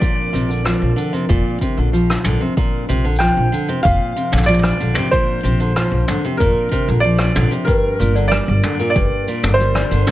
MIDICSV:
0, 0, Header, 1, 7, 480
1, 0, Start_track
1, 0, Key_signature, -2, "major"
1, 0, Tempo, 638298
1, 13, Time_signature, 4, 2, 24, 8
1, 7604, End_track
2, 0, Start_track
2, 0, Title_t, "Felt piano"
2, 0, Program_c, 0, 0
2, 0, Note_on_c, 0, 74, 93
2, 1172, Note_off_c, 0, 74, 0
2, 2397, Note_on_c, 0, 79, 94
2, 2878, Note_on_c, 0, 77, 94
2, 2899, Note_off_c, 0, 79, 0
2, 3355, Note_on_c, 0, 74, 88
2, 3380, Note_off_c, 0, 77, 0
2, 3845, Note_on_c, 0, 72, 85
2, 3858, Note_off_c, 0, 74, 0
2, 4793, Note_on_c, 0, 70, 81
2, 4838, Note_off_c, 0, 72, 0
2, 5266, Note_on_c, 0, 74, 86
2, 5298, Note_off_c, 0, 70, 0
2, 5614, Note_off_c, 0, 74, 0
2, 5750, Note_on_c, 0, 70, 80
2, 6225, Note_on_c, 0, 74, 74
2, 6256, Note_off_c, 0, 70, 0
2, 6681, Note_off_c, 0, 74, 0
2, 6693, Note_on_c, 0, 74, 76
2, 7172, Note_on_c, 0, 72, 80
2, 7208, Note_off_c, 0, 74, 0
2, 7604, Note_off_c, 0, 72, 0
2, 7604, End_track
3, 0, Start_track
3, 0, Title_t, "Celesta"
3, 0, Program_c, 1, 8
3, 5912, Control_c, 1, 64, 127
3, 6008, Note_on_c, 1, 70, 68
3, 6124, Note_off_c, 1, 70, 0
3, 6131, Note_on_c, 1, 74, 94
3, 6246, Note_off_c, 1, 74, 0
3, 6609, Note_on_c, 1, 70, 70
3, 6725, Note_off_c, 1, 70, 0
3, 6738, Note_on_c, 1, 74, 98
3, 6850, Note_off_c, 1, 74, 0
3, 7221, Note_on_c, 1, 70, 76
3, 7331, Note_off_c, 1, 70, 0
3, 7334, Note_on_c, 1, 74, 98
3, 7447, Note_off_c, 1, 74, 0
3, 7604, End_track
4, 0, Start_track
4, 0, Title_t, "Ambient pad"
4, 0, Program_c, 2, 92
4, 0, Note_on_c, 2, 53, 81
4, 0, Note_on_c, 2, 60, 78
4, 0, Note_on_c, 2, 62, 70
4, 0, Note_on_c, 2, 70, 87
4, 5742, Note_off_c, 2, 70, 0
4, 5743, Note_off_c, 2, 53, 0
4, 5744, Note_off_c, 2, 60, 0
4, 5762, Note_on_c, 2, 58, 75
4, 5768, Note_on_c, 2, 55, 75
4, 5768, Note_on_c, 2, 70, 91
4, 7604, Note_off_c, 2, 55, 0
4, 7604, Note_off_c, 2, 58, 0
4, 7604, Note_off_c, 2, 62, 0
4, 7604, Note_off_c, 2, 70, 0
4, 7604, End_track
5, 0, Start_track
5, 0, Title_t, "Nylon-string guitar"
5, 0, Program_c, 3, 24
5, 8, Note_on_c, 3, 46, 86
5, 238, Note_off_c, 3, 46, 0
5, 247, Note_on_c, 3, 48, 89
5, 364, Note_off_c, 3, 48, 0
5, 365, Note_on_c, 3, 50, 74
5, 477, Note_off_c, 3, 50, 0
5, 485, Note_on_c, 3, 53, 67
5, 717, Note_off_c, 3, 53, 0
5, 722, Note_on_c, 3, 50, 89
5, 836, Note_off_c, 3, 50, 0
5, 848, Note_on_c, 3, 48, 92
5, 958, Note_off_c, 3, 48, 0
5, 969, Note_on_c, 3, 46, 95
5, 1199, Note_off_c, 3, 46, 0
5, 1213, Note_on_c, 3, 48, 87
5, 1327, Note_off_c, 3, 48, 0
5, 1332, Note_on_c, 3, 50, 64
5, 1440, Note_off_c, 3, 50, 0
5, 1452, Note_on_c, 3, 53, 71
5, 1680, Note_off_c, 3, 53, 0
5, 1694, Note_on_c, 3, 50, 88
5, 1801, Note_off_c, 3, 50, 0
5, 1810, Note_on_c, 3, 48, 97
5, 1919, Note_off_c, 3, 48, 0
5, 1934, Note_on_c, 3, 46, 98
5, 2161, Note_off_c, 3, 46, 0
5, 2171, Note_on_c, 3, 48, 95
5, 2286, Note_off_c, 3, 48, 0
5, 2289, Note_on_c, 3, 50, 76
5, 2399, Note_off_c, 3, 50, 0
5, 2406, Note_on_c, 3, 53, 73
5, 2637, Note_off_c, 3, 53, 0
5, 2648, Note_on_c, 3, 50, 86
5, 2758, Note_off_c, 3, 50, 0
5, 2771, Note_on_c, 3, 48, 92
5, 2880, Note_off_c, 3, 48, 0
5, 2888, Note_on_c, 3, 46, 89
5, 3118, Note_off_c, 3, 46, 0
5, 3131, Note_on_c, 3, 48, 90
5, 3246, Note_off_c, 3, 48, 0
5, 3248, Note_on_c, 3, 50, 70
5, 3358, Note_off_c, 3, 50, 0
5, 3371, Note_on_c, 3, 53, 77
5, 3600, Note_off_c, 3, 53, 0
5, 3609, Note_on_c, 3, 50, 94
5, 3719, Note_off_c, 3, 50, 0
5, 3731, Note_on_c, 3, 48, 94
5, 3840, Note_off_c, 3, 48, 0
5, 3849, Note_on_c, 3, 46, 91
5, 4079, Note_off_c, 3, 46, 0
5, 4085, Note_on_c, 3, 48, 90
5, 4203, Note_off_c, 3, 48, 0
5, 4210, Note_on_c, 3, 50, 77
5, 4320, Note_off_c, 3, 50, 0
5, 4333, Note_on_c, 3, 53, 77
5, 4561, Note_off_c, 3, 53, 0
5, 4573, Note_on_c, 3, 50, 88
5, 4681, Note_off_c, 3, 50, 0
5, 4697, Note_on_c, 3, 48, 91
5, 4803, Note_off_c, 3, 48, 0
5, 4814, Note_on_c, 3, 46, 90
5, 5041, Note_off_c, 3, 46, 0
5, 5049, Note_on_c, 3, 48, 93
5, 5165, Note_off_c, 3, 48, 0
5, 5172, Note_on_c, 3, 50, 66
5, 5280, Note_off_c, 3, 50, 0
5, 5293, Note_on_c, 3, 53, 69
5, 5521, Note_off_c, 3, 53, 0
5, 5529, Note_on_c, 3, 50, 88
5, 5639, Note_off_c, 3, 50, 0
5, 5646, Note_on_c, 3, 48, 94
5, 5757, Note_off_c, 3, 48, 0
5, 5767, Note_on_c, 3, 43, 93
5, 5998, Note_off_c, 3, 43, 0
5, 6012, Note_on_c, 3, 46, 88
5, 6126, Note_off_c, 3, 46, 0
5, 6133, Note_on_c, 3, 50, 76
5, 6241, Note_off_c, 3, 50, 0
5, 6252, Note_on_c, 3, 55, 73
5, 6480, Note_off_c, 3, 55, 0
5, 6494, Note_on_c, 3, 50, 94
5, 6601, Note_off_c, 3, 50, 0
5, 6614, Note_on_c, 3, 46, 92
5, 6721, Note_off_c, 3, 46, 0
5, 6734, Note_on_c, 3, 43, 82
5, 6961, Note_off_c, 3, 43, 0
5, 6978, Note_on_c, 3, 46, 90
5, 7089, Note_off_c, 3, 46, 0
5, 7094, Note_on_c, 3, 50, 64
5, 7201, Note_off_c, 3, 50, 0
5, 7216, Note_on_c, 3, 55, 78
5, 7442, Note_off_c, 3, 55, 0
5, 7455, Note_on_c, 3, 50, 91
5, 7562, Note_off_c, 3, 50, 0
5, 7578, Note_on_c, 3, 46, 101
5, 7604, Note_off_c, 3, 46, 0
5, 7604, End_track
6, 0, Start_track
6, 0, Title_t, "Upright bass"
6, 0, Program_c, 4, 32
6, 254, Note_on_c, 4, 34, 85
6, 542, Note_off_c, 4, 34, 0
6, 615, Note_on_c, 4, 34, 85
6, 689, Note_off_c, 4, 34, 0
6, 975, Note_on_c, 4, 29, 88
6, 1049, Note_off_c, 4, 29, 0
6, 1335, Note_on_c, 4, 34, 92
6, 1623, Note_off_c, 4, 34, 0
6, 1689, Note_on_c, 4, 34, 97
6, 1767, Note_off_c, 4, 34, 0
6, 2177, Note_on_c, 4, 34, 82
6, 2464, Note_off_c, 4, 34, 0
6, 2533, Note_on_c, 4, 34, 87
6, 2608, Note_off_c, 4, 34, 0
6, 2895, Note_on_c, 4, 29, 90
6, 2969, Note_off_c, 4, 29, 0
6, 3255, Note_on_c, 4, 34, 91
6, 3543, Note_off_c, 4, 34, 0
6, 3613, Note_on_c, 4, 34, 92
6, 3689, Note_off_c, 4, 34, 0
6, 4093, Note_on_c, 4, 34, 86
6, 4382, Note_off_c, 4, 34, 0
6, 4449, Note_on_c, 4, 34, 93
6, 4526, Note_off_c, 4, 34, 0
6, 4816, Note_on_c, 4, 29, 96
6, 4890, Note_off_c, 4, 29, 0
6, 5177, Note_on_c, 4, 34, 97
6, 5464, Note_off_c, 4, 34, 0
6, 5533, Note_on_c, 4, 34, 84
6, 5608, Note_off_c, 4, 34, 0
6, 6014, Note_on_c, 4, 31, 85
6, 6302, Note_off_c, 4, 31, 0
6, 6376, Note_on_c, 4, 31, 96
6, 6450, Note_off_c, 4, 31, 0
6, 6736, Note_on_c, 4, 29, 97
6, 6810, Note_off_c, 4, 29, 0
6, 7093, Note_on_c, 4, 31, 90
6, 7382, Note_off_c, 4, 31, 0
6, 7454, Note_on_c, 4, 31, 91
6, 7529, Note_off_c, 4, 31, 0
6, 7604, End_track
7, 0, Start_track
7, 0, Title_t, "Drums"
7, 13, Note_on_c, 9, 36, 105
7, 17, Note_on_c, 9, 69, 42
7, 89, Note_off_c, 9, 36, 0
7, 92, Note_off_c, 9, 69, 0
7, 262, Note_on_c, 9, 69, 73
7, 337, Note_off_c, 9, 69, 0
7, 382, Note_on_c, 9, 69, 53
7, 457, Note_off_c, 9, 69, 0
7, 492, Note_on_c, 9, 37, 67
7, 494, Note_on_c, 9, 69, 50
7, 567, Note_off_c, 9, 37, 0
7, 569, Note_off_c, 9, 69, 0
7, 736, Note_on_c, 9, 69, 72
7, 811, Note_off_c, 9, 69, 0
7, 859, Note_on_c, 9, 69, 44
7, 934, Note_off_c, 9, 69, 0
7, 973, Note_on_c, 9, 36, 107
7, 976, Note_on_c, 9, 69, 43
7, 1048, Note_off_c, 9, 36, 0
7, 1051, Note_off_c, 9, 69, 0
7, 1214, Note_on_c, 9, 36, 48
7, 1216, Note_on_c, 9, 69, 80
7, 1289, Note_off_c, 9, 36, 0
7, 1291, Note_off_c, 9, 69, 0
7, 1460, Note_on_c, 9, 69, 59
7, 1535, Note_off_c, 9, 69, 0
7, 1579, Note_on_c, 9, 37, 66
7, 1654, Note_off_c, 9, 37, 0
7, 1685, Note_on_c, 9, 45, 61
7, 1695, Note_on_c, 9, 69, 78
7, 1760, Note_off_c, 9, 45, 0
7, 1770, Note_off_c, 9, 69, 0
7, 1933, Note_on_c, 9, 69, 39
7, 1934, Note_on_c, 9, 36, 108
7, 2008, Note_off_c, 9, 69, 0
7, 2009, Note_off_c, 9, 36, 0
7, 2178, Note_on_c, 9, 69, 80
7, 2253, Note_off_c, 9, 69, 0
7, 2294, Note_on_c, 9, 69, 25
7, 2369, Note_off_c, 9, 69, 0
7, 2374, Note_on_c, 9, 69, 33
7, 2406, Note_on_c, 9, 37, 67
7, 2416, Note_off_c, 9, 69, 0
7, 2416, Note_on_c, 9, 69, 48
7, 2453, Note_off_c, 9, 69, 0
7, 2453, Note_on_c, 9, 69, 44
7, 2481, Note_off_c, 9, 37, 0
7, 2528, Note_off_c, 9, 69, 0
7, 2659, Note_on_c, 9, 69, 74
7, 2734, Note_off_c, 9, 69, 0
7, 2769, Note_on_c, 9, 69, 48
7, 2845, Note_off_c, 9, 69, 0
7, 2895, Note_on_c, 9, 36, 102
7, 2895, Note_on_c, 9, 69, 41
7, 2970, Note_off_c, 9, 36, 0
7, 2970, Note_off_c, 9, 69, 0
7, 3137, Note_on_c, 9, 69, 65
7, 3212, Note_off_c, 9, 69, 0
7, 3252, Note_on_c, 9, 45, 62
7, 3256, Note_on_c, 9, 69, 56
7, 3290, Note_off_c, 9, 45, 0
7, 3290, Note_on_c, 9, 45, 53
7, 3331, Note_off_c, 9, 69, 0
7, 3333, Note_off_c, 9, 45, 0
7, 3333, Note_on_c, 9, 45, 43
7, 3368, Note_off_c, 9, 45, 0
7, 3368, Note_on_c, 9, 45, 37
7, 3369, Note_on_c, 9, 69, 48
7, 3410, Note_off_c, 9, 45, 0
7, 3410, Note_on_c, 9, 45, 31
7, 3444, Note_off_c, 9, 69, 0
7, 3449, Note_off_c, 9, 45, 0
7, 3449, Note_on_c, 9, 45, 24
7, 3485, Note_on_c, 9, 37, 77
7, 3524, Note_off_c, 9, 45, 0
7, 3561, Note_off_c, 9, 37, 0
7, 3612, Note_on_c, 9, 69, 59
7, 3687, Note_off_c, 9, 69, 0
7, 3720, Note_on_c, 9, 45, 75
7, 3728, Note_on_c, 9, 69, 52
7, 3795, Note_off_c, 9, 45, 0
7, 3803, Note_off_c, 9, 69, 0
7, 3855, Note_on_c, 9, 69, 39
7, 3856, Note_on_c, 9, 36, 102
7, 3930, Note_off_c, 9, 69, 0
7, 3931, Note_off_c, 9, 36, 0
7, 4097, Note_on_c, 9, 69, 74
7, 4173, Note_off_c, 9, 69, 0
7, 4212, Note_on_c, 9, 69, 48
7, 4287, Note_off_c, 9, 69, 0
7, 4333, Note_on_c, 9, 37, 74
7, 4334, Note_on_c, 9, 69, 46
7, 4408, Note_off_c, 9, 37, 0
7, 4409, Note_off_c, 9, 69, 0
7, 4570, Note_on_c, 9, 45, 60
7, 4574, Note_on_c, 9, 69, 88
7, 4645, Note_off_c, 9, 45, 0
7, 4649, Note_off_c, 9, 69, 0
7, 4695, Note_on_c, 9, 69, 45
7, 4770, Note_off_c, 9, 69, 0
7, 4815, Note_on_c, 9, 36, 97
7, 4817, Note_on_c, 9, 69, 44
7, 4890, Note_off_c, 9, 36, 0
7, 4892, Note_off_c, 9, 69, 0
7, 5055, Note_on_c, 9, 36, 48
7, 5058, Note_on_c, 9, 69, 76
7, 5130, Note_off_c, 9, 36, 0
7, 5133, Note_off_c, 9, 69, 0
7, 5176, Note_on_c, 9, 69, 53
7, 5251, Note_off_c, 9, 69, 0
7, 5403, Note_on_c, 9, 37, 76
7, 5479, Note_off_c, 9, 37, 0
7, 5531, Note_on_c, 9, 45, 74
7, 5538, Note_on_c, 9, 69, 72
7, 5606, Note_off_c, 9, 45, 0
7, 5613, Note_off_c, 9, 69, 0
7, 5657, Note_on_c, 9, 69, 50
7, 5732, Note_off_c, 9, 69, 0
7, 5774, Note_on_c, 9, 36, 107
7, 5779, Note_on_c, 9, 69, 44
7, 5850, Note_off_c, 9, 36, 0
7, 5854, Note_off_c, 9, 69, 0
7, 6023, Note_on_c, 9, 69, 87
7, 6098, Note_off_c, 9, 69, 0
7, 6138, Note_on_c, 9, 69, 47
7, 6213, Note_off_c, 9, 69, 0
7, 6252, Note_on_c, 9, 37, 78
7, 6252, Note_on_c, 9, 69, 48
7, 6327, Note_off_c, 9, 69, 0
7, 6328, Note_off_c, 9, 37, 0
7, 6491, Note_on_c, 9, 45, 57
7, 6495, Note_on_c, 9, 69, 84
7, 6567, Note_off_c, 9, 45, 0
7, 6570, Note_off_c, 9, 69, 0
7, 6618, Note_on_c, 9, 69, 47
7, 6693, Note_off_c, 9, 69, 0
7, 6733, Note_on_c, 9, 69, 50
7, 6735, Note_on_c, 9, 36, 103
7, 6808, Note_off_c, 9, 69, 0
7, 6810, Note_off_c, 9, 36, 0
7, 6977, Note_on_c, 9, 69, 74
7, 7052, Note_off_c, 9, 69, 0
7, 7095, Note_on_c, 9, 45, 80
7, 7103, Note_on_c, 9, 69, 59
7, 7170, Note_off_c, 9, 45, 0
7, 7178, Note_off_c, 9, 69, 0
7, 7223, Note_on_c, 9, 69, 46
7, 7298, Note_off_c, 9, 69, 0
7, 7333, Note_on_c, 9, 37, 76
7, 7408, Note_off_c, 9, 37, 0
7, 7457, Note_on_c, 9, 69, 71
7, 7532, Note_off_c, 9, 69, 0
7, 7572, Note_on_c, 9, 45, 73
7, 7604, Note_off_c, 9, 45, 0
7, 7604, End_track
0, 0, End_of_file